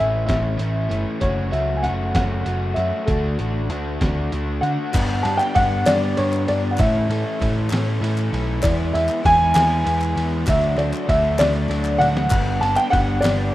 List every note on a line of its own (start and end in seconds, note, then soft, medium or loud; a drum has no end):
0.00 0.25 A1 medium
0.00 0.25 A2 medium
0.00 0.25 E3 medium
0.00 0.26 A3 medium
0.00 0.26 C#4 medium
0.00 0.26 E4 medium
0.00 0.25 E5 loud
0.26 0.57 A1 medium
0.26 0.56 A2 medium
0.26 0.56 E3 medium
0.26 0.57 A3 medium
0.26 0.57 C#4 medium
0.26 0.57 E4 medium
0.26 0.93 E5 medium
0.26 kick medium
0.26 snare loud
0.26 closed hi-hat medium
0.57 0.87 A1 medium
0.57 0.87 A2 medium
0.57 0.88 E3 medium
0.57 0.89 A3 medium
0.57 0.88 C#4 medium
0.57 0.89 E4 medium
0.57 closed hi-hat medium
0.61 0.92 A3 medium
0.89 1.05 G1 medium
0.89 1.19 A2 medium
0.89 1.19 E3 medium
0.89 1.20 A3 medium
0.89 1.19 C#4 medium
0.89 1.20 E4 medium
0.89 closed hi-hat medium
1.20 1.50 F#1 loud
1.20 1.50 F#3 medium
1.20 1.51 A3 loud
1.20 1.51 C#4 loud
1.20 1.52 F#4 loud
1.20 1.53 C#5 medium
1.20 kick medium
1.20 closed hi-hat medium
1.51 1.86 C#2 medium
1.51 1.82 F#3 medium
1.51 1.82 A3 medium
1.51 1.82 C#4 medium
1.51 1.83 F#4 medium
1.51 1.75 E5 medium
1.51 closed hi-hat soft
1.77 1.84 G#5 medium
1.82 2.12 F#1 medium
1.82 2.14 F#3 medium
1.82 2.14 A3 medium
1.82 2.14 C#4 medium
1.82 2.16 F#4 medium
1.82 2.12 F#5 medium
1.82 closed hi-hat medium
2.14 2.42 F#1 medium
2.14 2.45 F#3 medium
2.14 2.44 A3 medium
2.14 2.45 C#4 medium
2.14 2.46 F#4 medium
2.14 2.79 F#5 medium
2.14 kick medium
2.14 snare loud
2.14 closed hi-hat medium
2.45 2.73 F#1 medium
2.45 2.76 F#3 medium
2.45 2.76 A3 medium
2.45 2.76 C#4 medium
2.45 2.77 F#4 medium
2.45 closed hi-hat medium
2.74 2.91 F#2 medium
2.74 3.07 F#3 medium
2.74 3.06 A3 medium
2.74 3.06 C#4 medium
2.74 3.08 F#4 medium
2.74 3.07 E5 medium
2.74 closed hi-hat medium
3.06 3.35 D2 loud
3.06 3.37 D3 medium
3.06 3.38 A3 medium
3.06 3.38 D4 loud
3.06 3.39 F#4 medium
3.06 4.57 A4 medium
3.06 kick loud
3.06 closed hi-hat medium
3.38 3.69 A1 medium
3.38 3.69 D3 medium
3.38 3.69 A3 medium
3.38 3.70 D4 medium
3.38 3.70 F#4 medium
3.38 closed hi-hat soft
3.69 3.97 D2 medium
3.69 4.00 D3 medium
3.69 4.00 A3 medium
3.69 4.01 D4 medium
3.69 4.01 F#4 medium
3.69 closed hi-hat medium
4.01 4.29 D2 medium
4.01 4.32 D3 medium
4.01 4.32 A3 medium
4.01 4.32 D4 medium
4.01 4.32 F#4 medium
4.01 kick medium
4.01 snare loud
4.01 closed hi-hat medium
4.32 4.60 D2 medium
4.32 4.61 D3 medium
4.32 4.62 A3 medium
4.32 4.62 D4 medium
4.32 4.62 F#4 medium
4.32 closed hi-hat medium
4.61 4.76 D3 medium
4.61 4.91 D3 medium
4.61 4.92 A3 medium
4.61 4.92 D4 medium
4.61 4.92 F#4 medium
4.61 5.25 F#5 medium
4.61 closed hi-hat medium
4.92 5.21 G2 medium
4.92 5.24 D3 medium
4.92 5.24 G3 medium
4.92 5.23 B3 medium
4.92 5.22 D4 loud
4.92 kick loud
4.92 clap medium
4.92 crash loud
4.92 ride loud
4.97 5.23 G4 medium
5.23 5.39 G2 loud
5.23 5.53 D3 medium
5.23 5.53 G3 medium
5.23 5.54 B3 medium
5.23 5.54 D4 medium
5.23 5.57 G4 medium
5.23 5.38 A5 medium
5.23 ride medium
5.37 5.53 G5 medium
5.37 clap medium
5.54 5.83 G2 loud
5.54 5.86 D3 medium
5.54 5.86 G3 medium
5.54 5.86 B3 medium
5.54 5.85 D4 medium
5.54 5.87 F#5 loud
5.54 kick medium
5.54 clap soft
5.54 ride medium
5.59 5.85 G4 medium
5.86 6.14 G2 medium
5.86 6.16 D3 medium
5.86 6.16 G3 medium
5.86 6.16 B3 medium
5.86 6.17 D4 medium
5.86 6.19 G4 medium
5.86 6.18 D5 loud
5.86 snare loud
5.86 clap medium
5.86 ride loud
6.17 6.45 G2 medium
6.17 6.48 D3 medium
6.17 6.47 G3 medium
6.17 6.47 B3 medium
6.17 6.47 D4 medium
6.17 6.79 G4 medium
6.17 6.49 C#5 medium
6.17 ride medium
6.33 clap medium
6.48 6.76 G2 medium
6.48 6.78 D3 medium
6.48 6.78 G3 medium
6.48 6.79 B3 medium
6.48 6.79 D4 medium
6.48 6.73 D5 medium
6.48 ride medium
6.71 6.78 F#5 medium
6.78 7.06 A2 medium
6.78 7.09 E3 medium
6.78 7.09 A3 medium
6.78 7.09 C#4 loud
6.78 7.08 E4 loud
6.78 7.07 A4 loud
6.78 7.44 E5 medium
6.78 kick loud
6.78 clap medium
6.78 ride medium
7.08 7.23 A2 loud
7.08 7.39 E3 medium
7.08 7.40 A3 medium
7.08 7.40 C#4 medium
7.08 7.40 E4 medium
7.08 7.42 A4 medium
7.08 ride medium
7.40 7.68 A2 loud
7.40 7.70 E3 medium
7.40 7.70 A3 medium
7.40 7.69 C#4 medium
7.40 7.69 E4 medium
7.40 7.69 A4 medium
7.40 kick medium
7.40 clap soft
7.40 ride medium
7.70 7.99 A2 medium
7.70 8.01 E3 medium
7.70 8.01 A3 medium
7.70 8.01 C#4 medium
7.70 8.01 E4 medium
7.70 8.03 A4 medium
7.70 snare loud
7.70 clap medium
7.70 ride medium
8.01 8.29 A2 medium
8.01 8.33 E3 medium
8.01 8.32 A3 medium
8.01 8.32 C#4 medium
8.01 8.32 E4 medium
8.01 8.63 A4 medium
8.01 ride medium
8.18 clap medium
8.33 8.60 B1 medium
8.33 8.63 E3 medium
8.33 8.64 A3 medium
8.33 8.64 C#4 medium
8.33 8.63 E4 medium
8.33 ride medium
8.63 8.91 E2 medium
8.63 8.94 E3 medium
8.63 8.94 G#3 medium
8.63 8.93 B3 loud
8.63 8.92 E4 loud
8.63 8.92 G#4 medium
8.63 8.91 D5 medium
8.63 kick loud
8.63 clap loud
8.63 ride medium
8.93 9.08 E2 loud
8.93 9.25 E3 medium
8.93 9.25 G#3 medium
8.93 9.25 B3 medium
8.93 9.24 E4 medium
8.93 9.24 G#4 medium
8.93 9.25 E5 medium
8.93 ride medium
9.09 clap medium
9.25 9.52 E2 medium
9.25 9.55 E3 medium
9.25 9.54 G#3 medium
9.25 9.54 B3 medium
9.25 9.53 E4 medium
9.25 9.54 G#4 medium
9.25 9.53 G#5 loud
9.25 kick medium
9.25 clap soft
9.25 ride medium
9.54 9.83 E2 medium
9.54 9.83 E3 medium
9.54 9.83 G#3 medium
9.54 9.84 B3 medium
9.54 9.85 E4 medium
9.54 9.87 G#4 medium
9.54 10.12 G#5 medium
9.54 snare loud
9.54 clap loud
9.54 ride loud
9.84 10.13 E2 medium
9.84 10.16 E3 medium
9.84 10.15 G#3 medium
9.84 10.16 B3 medium
9.84 10.15 E4 medium
9.84 ride medium
9.88 10.47 G#4 medium
10.02 clap medium
10.16 10.44 E2 medium
10.16 10.46 E3 medium
10.16 10.47 G#3 medium
10.16 10.47 B3 medium
10.16 10.47 E4 medium
10.16 ride medium
10.46 10.75 D2 medium
10.46 10.77 D3 loud
10.46 11.06 F#3 medium
10.46 10.76 A3 medium
10.46 10.76 D4 medium
10.46 10.76 F#4 medium
10.46 10.76 A4 medium
10.46 10.80 E5 medium
10.46 kick loud
10.46 clap medium
10.46 ride medium
10.63 clap soft
10.77 10.91 D2 medium
10.77 11.07 D3 medium
10.77 11.07 A3 medium
10.77 11.08 D4 medium
10.77 11.08 F#4 medium
10.77 11.09 A4 medium
10.77 11.06 D5 medium
10.77 clap soft
10.77 ride medium
10.93 clap medium
11.07 11.36 D2 loud
11.07 11.39 D3 medium
11.07 11.41 F#3 medium
11.07 11.39 A3 medium
11.07 11.38 D4 medium
11.07 11.38 F#4 medium
11.07 11.38 A4 medium
11.07 11.40 E5 loud
11.07 kick medium
11.07 ride medium
11.24 clap soft
11.39 11.66 D2 medium
11.39 11.68 D3 medium
11.39 11.67 F#3 medium
11.39 11.69 A3 medium
11.39 11.69 D4 medium
11.39 11.69 F#4 medium
11.39 11.70 A4 medium
11.39 12.02 D5 medium
11.39 snare loud
11.39 clap medium
11.39 ride loud
11.54 clap soft
11.68 11.97 D2 medium
11.68 12.00 D3 medium
11.68 12.29 F#3 medium
11.68 12.00 A3 medium
11.68 11.99 D4 medium
11.68 11.98 F#4 medium
11.68 12.30 A4 medium
11.68 clap soft
11.68 ride medium
11.85 clap medium
11.98 12.27 D2 medium
11.98 12.30 D3 medium
11.98 12.30 A3 medium
11.98 12.29 D4 medium
11.98 12.30 F#4 medium
11.98 12.57 F#5 loud
11.98 high tom medium
11.98 ride medium
12.17 snare medium
12.30 12.59 G1 loud
12.30 12.62 G3 medium
12.30 12.61 B3 medium
12.30 12.61 D4 loud
12.30 12.60 G4 loud
12.30 kick loud
12.30 clap loud
12.30 crash medium
12.61 12.75 G1 medium
12.61 12.90 G3 medium
12.61 12.91 B3 medium
12.61 12.92 D4 medium
12.61 12.92 G4 medium
12.61 12.77 A5 medium
12.61 ride medium
12.76 12.93 G5 medium
12.76 clap medium
12.90 13.20 G1 loud
12.90 13.23 G3 medium
12.90 13.21 B3 medium
12.90 13.22 D4 medium
12.90 13.21 G4 medium
12.90 13.23 F#5 loud
12.90 kick medium
12.90 clap soft
12.90 ride medium
13.21 13.50 G1 medium
13.21 13.53 G3 medium
13.21 13.53 B3 medium
13.21 13.53 D4 medium
13.21 13.53 G4 medium
13.21 13.50 D5 medium
13.21 clap medium
13.21 ride loud
13.25 snare loud